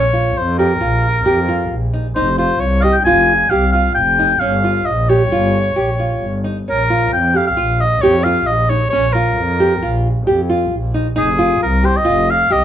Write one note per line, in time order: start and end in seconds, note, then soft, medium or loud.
0.00 0.30 A#1 medium
0.00 0.39 C#5 medium
0.13 0.38 F4 medium
0.37 0.75 F2 medium
0.37 0.58 C5 medium
0.59 0.71 G4 medium
0.59 1.90 A#4 medium
0.81 1.19 A#1 medium
0.81 1.06 F4 medium
1.26 1.64 F2 medium
1.26 1.38 G4 medium
1.49 1.73 F4 medium
1.71 2.09 A#1 medium
1.94 2.06 D#4 medium
2.15 2.54 F1 medium
2.15 2.28 D#4 medium
2.15 2.37 C5 medium
2.38 2.63 F4 medium
2.38 2.62 C5 medium
2.60 2.99 C2 medium
2.60 2.82 C#5 medium
2.81 2.96 G4 medium
2.81 2.94 D#5 medium
2.81 2.84 F5 medium
2.93 3.04 G5 medium
3.05 3.44 F1 medium
3.05 3.31 F4 medium
3.05 3.51 G#5 medium
3.50 3.89 C2 medium
3.50 3.64 G4 medium
3.50 3.71 F5 medium
3.72 3.99 F4 medium
3.72 3.94 F5 medium
3.95 4.35 F1 medium
3.95 4.41 G5 medium
4.19 4.31 D#4 medium
4.40 4.80 G1 medium
4.40 4.53 C#4 medium
4.40 4.87 F5 medium
4.64 4.89 F4 medium
4.85 5.25 A#1 medium
4.85 5.11 D#5 medium
5.09 5.22 G4 medium
5.09 6.44 C#5 medium
5.31 5.69 G1 medium
5.31 5.57 F4 medium
5.76 6.15 A#1 medium
5.76 5.89 G4 medium
6.00 6.24 F4 medium
6.21 6.60 G1 medium
6.44 6.57 D#4 medium
6.66 7.05 A#1 medium
6.66 6.80 C#4 medium
6.66 7.10 A#4 medium
6.90 7.15 F4 medium
7.12 7.50 F2 medium
7.12 7.38 G5 medium
7.34 7.47 G4 medium
7.34 7.46 F5 medium
7.47 7.82 F5 medium
7.57 7.95 A#1 medium
7.57 7.82 F4 medium
7.81 8.03 D#5 medium
8.01 8.40 F2 medium
8.01 8.15 G4 medium
8.01 8.25 C#5 medium
8.24 8.50 F4 medium
8.24 8.48 F5 medium
8.46 8.85 A#1 medium
8.46 8.71 D#5 medium
8.70 8.82 D#4 medium
8.70 8.89 C#5 medium
8.90 9.30 A#1 medium
8.90 9.05 C#4 medium
8.90 9.14 C#5 medium
9.13 9.40 F4 medium
9.13 10.03 A#4 medium
9.37 9.75 F2 medium
9.60 9.72 G4 medium
9.82 10.20 A#1 medium
9.82 10.07 F4 medium
10.27 10.65 F2 medium
10.27 10.39 G4 medium
10.50 10.74 F4 medium
10.72 11.10 A#1 medium
10.94 11.07 D#4 medium
11.16 11.55 F1 medium
11.16 11.28 D#4 medium
11.16 11.59 G#4 medium
11.39 11.64 F4 medium
11.61 12.00 C2 medium
11.61 11.87 A#4 medium
11.83 11.96 G4 medium
11.83 11.98 C5 medium
11.97 12.32 D#5 medium
12.05 12.45 F1 medium
12.05 12.30 F4 medium
12.30 12.53 F5 medium
12.50 12.64 C2 medium
12.50 12.63 G4 medium
12.50 12.64 D#5 medium